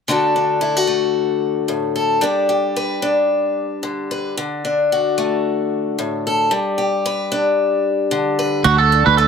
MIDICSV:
0, 0, Header, 1, 5, 480
1, 0, Start_track
1, 0, Key_signature, 2, "major"
1, 0, Tempo, 534759
1, 83, Time_signature, 4, 2, 24, 8
1, 8327, End_track
2, 0, Start_track
2, 0, Title_t, "Clean electric guitar"
2, 0, Program_c, 0, 27
2, 7759, Note_on_c, 0, 66, 85
2, 7880, Note_off_c, 0, 66, 0
2, 7884, Note_on_c, 0, 69, 71
2, 8117, Note_off_c, 0, 69, 0
2, 8130, Note_on_c, 0, 71, 71
2, 8230, Note_off_c, 0, 71, 0
2, 8234, Note_on_c, 0, 69, 76
2, 8327, Note_off_c, 0, 69, 0
2, 8327, End_track
3, 0, Start_track
3, 0, Title_t, "Steel-string acoustic guitar"
3, 0, Program_c, 1, 25
3, 73, Note_on_c, 1, 50, 58
3, 80, Note_on_c, 1, 57, 57
3, 84, Note_on_c, 1, 62, 51
3, 92, Note_on_c, 1, 66, 50
3, 101, Note_on_c, 1, 69, 53
3, 317, Note_off_c, 1, 62, 0
3, 321, Note_on_c, 1, 62, 48
3, 544, Note_off_c, 1, 66, 0
3, 547, Note_on_c, 1, 64, 61
3, 688, Note_off_c, 1, 64, 0
3, 688, Note_on_c, 1, 66, 44
3, 774, Note_off_c, 1, 57, 0
3, 784, Note_on_c, 1, 57, 61
3, 1510, Note_on_c, 1, 45, 57
3, 1745, Note_off_c, 1, 69, 0
3, 1756, Note_on_c, 1, 69, 49
3, 1970, Note_off_c, 1, 57, 0
3, 1985, Note_on_c, 1, 55, 60
3, 1986, Note_off_c, 1, 62, 0
3, 1990, Note_on_c, 1, 62, 55
3, 1992, Note_off_c, 1, 66, 0
3, 1995, Note_on_c, 1, 67, 51
3, 1998, Note_off_c, 1, 45, 0
3, 2001, Note_off_c, 1, 50, 0
3, 2001, Note_off_c, 1, 69, 0
3, 2223, Note_off_c, 1, 67, 0
3, 2234, Note_on_c, 1, 67, 52
3, 2481, Note_on_c, 1, 71, 65
3, 2709, Note_off_c, 1, 62, 0
3, 2713, Note_on_c, 1, 62, 62
3, 3437, Note_on_c, 1, 50, 58
3, 3678, Note_off_c, 1, 71, 0
3, 3689, Note_on_c, 1, 71, 47
3, 3896, Note_off_c, 1, 67, 0
3, 3903, Note_off_c, 1, 71, 0
3, 3916, Note_off_c, 1, 50, 0
3, 3918, Note_off_c, 1, 55, 0
3, 3927, Note_on_c, 1, 50, 66
3, 4167, Note_off_c, 1, 62, 0
3, 4171, Note_on_c, 1, 62, 52
3, 4419, Note_on_c, 1, 66, 54
3, 4648, Note_on_c, 1, 57, 59
3, 5372, Note_on_c, 1, 45, 58
3, 5626, Note_on_c, 1, 69, 52
3, 5823, Note_off_c, 1, 57, 0
3, 5828, Note_off_c, 1, 66, 0
3, 5843, Note_on_c, 1, 55, 63
3, 5848, Note_off_c, 1, 50, 0
3, 5851, Note_off_c, 1, 45, 0
3, 5857, Note_off_c, 1, 69, 0
3, 6084, Note_on_c, 1, 67, 53
3, 6333, Note_on_c, 1, 71, 67
3, 6563, Note_off_c, 1, 62, 0
3, 6567, Note_on_c, 1, 62, 61
3, 7281, Note_on_c, 1, 50, 66
3, 7518, Note_off_c, 1, 71, 0
3, 7529, Note_on_c, 1, 71, 56
3, 7737, Note_off_c, 1, 67, 0
3, 7738, Note_off_c, 1, 62, 0
3, 7741, Note_off_c, 1, 71, 0
3, 7750, Note_off_c, 1, 50, 0
3, 7758, Note_on_c, 1, 50, 70
3, 7762, Note_off_c, 1, 55, 0
3, 7766, Note_on_c, 1, 69, 59
3, 8008, Note_on_c, 1, 62, 58
3, 8242, Note_on_c, 1, 57, 65
3, 8327, Note_off_c, 1, 50, 0
3, 8327, Note_off_c, 1, 57, 0
3, 8327, Note_off_c, 1, 62, 0
3, 8327, Note_off_c, 1, 69, 0
3, 8327, End_track
4, 0, Start_track
4, 0, Title_t, "Fingered electric bass"
4, 0, Program_c, 2, 33
4, 7762, Note_on_c, 2, 38, 95
4, 8112, Note_off_c, 2, 38, 0
4, 8136, Note_on_c, 2, 38, 89
4, 8327, Note_off_c, 2, 38, 0
4, 8327, End_track
5, 0, Start_track
5, 0, Title_t, "Muted steel-string acoustic guitar strokes"
5, 2005, Note_on_c, 9, 29, 56
5, 2095, Note_off_c, 9, 29, 0
5, 8327, End_track
0, 0, End_of_file